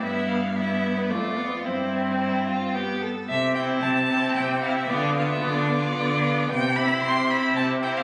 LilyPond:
<<
  \new Staff \with { instrumentName = "Violin" } { \time 3/4 \key c \major \tempo 4 = 112 e''8 f''8 e''8. b'16 d''4 | c''2 r4 | e''8 g''8 a''4 g''8 f''16 e''16 | d''8 f''16 e''16 d''2 |
g''8 b''8 c'''8 b''8 a''8 g''16 f''16 | }
  \new Staff \with { instrumentName = "Violin" } { \time 3/4 \key c \major e'4 e'4 f'4 | e'4 e'8 f'8 g'8 a'8 | r8 e'4 e'4 e'8 | f'8 f'4 f'4 f'8 |
r8 e'4 e'4 e'8 | }
  \new Staff \with { instrumentName = "Viola" } { \time 3/4 \key c \major b4 b4 a8 b8 | c'2 b8 r8 | r8 c'4 c'4 c'8 | b8 b4 b4 b8 |
r8 c'4 c'4 c'8 | }
  \new Staff \with { instrumentName = "Cello" } { \clef bass \time 3/4 \key c \major g,2 f,4 | g,2~ g,8 r8 | c4 c4 c4 | d4 d4 d4 |
c4 c4 c4 | }
>>